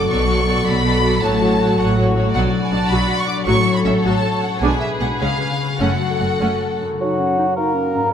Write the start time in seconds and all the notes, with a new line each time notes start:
Already playing: F#2 A3 F#4 A4 D5 F#5 D6
0.01 F#3
0.09 B1 B2 F#3 F#4 A4 D5 C#6
0.20 A3
0.27 F#3 F#4 A4 D5
0.39 D5
0.46 F#3 F#4 A4 D5
0.57 F#5
0.64 B1 B2 F#3 F#4 A4 D5 B5 D6
0.76 F#5
0.84 F#3 F#4 A4 D5
0.94 F#4
1.03 F#3 A3 F#4 A4 D5
1.12 F#3
1.22 A1 A2 F#3 F#4 C#5 A5
1.31 A3
1.40 F#3 F#4 C#5
1.50 C#5
1.59 F#3 F#4 A4 C#5
1.69 F#5
1.78 A1 A2 F#3 F#4 C#5 F#5 C#6
1.87 F#5
1.96 F#3 F#4 A4 C#5
2.07 F#4
2.16 F#3 A3 F#4 C#5
2.26 F#3
2.34 B1 B2 F#3 F#4 D5 F#5
2.44 D4
2.53 F#4
2.61 B4 G#5
2.71 B1 B2 F#3 D4 D5 A5
2.80 F#5
2.89 B1 B2 F#3 F#4 B5
3.08 D5
3.17 F#4 C#6
3.27 D4 D6
3.37 F#3
3.46 A1 A2 F#3 F#4 A4 C#5 C#6
3.56 C#4
3.65 F#4
3.75 C#5 B5
3.84 A1 A2 F#3 C#4 F#4 E5
3.94 F#5
4.04 A1 A2 F#3 F#4 A5
4.13 F#5
4.23 C#5
4.32 F#4
4.42 C#4 F#5
4.51 A3
4.60 B1 B2 G#3 D4 G#4 B4 G#5
4.71 D4
4.80 G#4 E5
4.91 B4
5.01 B1 B2 G#3 B3 D5 F#5
5.11 G#5
5.20 C#2 C#3 G#3 C#4 F5
5.31 C#4
5.41 G#4
5.51 B4
5.61 C#5
5.70 G#5
5.80 F#1 F#2 A3 C#4 F#4 A4 F#5
5.90 C#4
5.99 F#4
6.09 A4
6.20 F#1 F#2 A3 C#5
6.30 F#5
6.40 F#1 F#2 A3 C#4 A5
6.50 F#5
6.59 C#5
6.70 F#4
6.79 F#2 C#4
6.86 C#4
6.90 C#3 F#4
6.95 A#4
7.00 F#3 D#4 F#4 F#5
7.20 C#4
7.38 D#4
7.56 A#3 D#4 A#4 A#5
7.74 C#4
7.94 G#2 C#4
7.98 C#4
8.03 B4
8.07 C#5